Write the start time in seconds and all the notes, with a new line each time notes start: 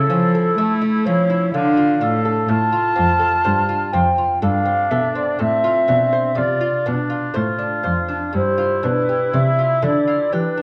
Already playing: E4 A4
0.10 F3 C#4 E4
0.35 A4
0.58 A3 E5
0.81 E4
1.05 F3 C#4 C#5
1.29 E4
1.52 D3 D4 F5
1.77 F4
2.01 A2 D4 A4
2.25 A4
2.48 A2 F4 A5
2.72 F4
2.95 F2 C4
3.19 A4
3.44 G2 C5
3.69 F4
3.93 F2 C4 G5
4.18 F4
4.42 G2 D4 A4 F5
4.65 C4
4.90 B2 A4 E5
5.15 C4 D5
5.39 A2 C4 E5
5.64 F4
5.88 B2 D4
6.13 C5
6.35 C3 F4 D5
6.61 F4
6.86 B2 D4
7.10 F4
7.34 A2 F4 C5
7.59 D4
7.83 F2 C5
8.09 D4
8.33 G2 E4 C5
8.58 F4
8.83 B2 D4 B4
9.09 G4
9.33 C3 D5 E5
9.59 F4
9.83 D3 D4 D5
10.07 F4
10.32 E3 D4 G4 B4
10.58 D4